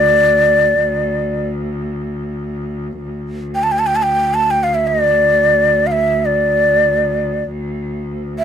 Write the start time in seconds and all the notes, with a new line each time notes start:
Already playing: D2 D5
3.04 D2
3.55 G5
3.63 A5
3.72 G5
3.79 A5
3.87 G5
3.96 A5
4.03 G5
4.34 A5
4.51 G5
4.63 F5
4.75 E5
4.87 D5
5.87 F5
5.92 E5
6.25 D5
8.39 E5